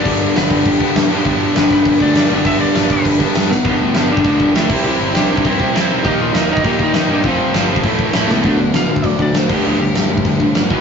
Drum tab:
CC |x-x-x-x-x-x-x-x-|x-x-x-x-x-x-x-x-|x-x-x-x-x-x-x---|x---x---x---x-x-|
SD |----o-------o---|----o-------o---|----o-------o-o-|----o-------o---|
BD |o-----o-o-o-----|o-----o-o-o-----|o-----o-o-o-----|o------oo-o---o-|

CC |x---x---x---x---|x---x---x---x---|x---x---x---x---|x---x---x---x-x-|
SD |----o-------o---|----o-------o---|----o-------o-o-|----o-------o---|
BD |-------oo-o-----|o------oo-o-----|o------oo-o-----|o------oo-o---o-|

CC |x---x---x---x---|
SD |----o-------o---|
BD |-------oo-o---o-|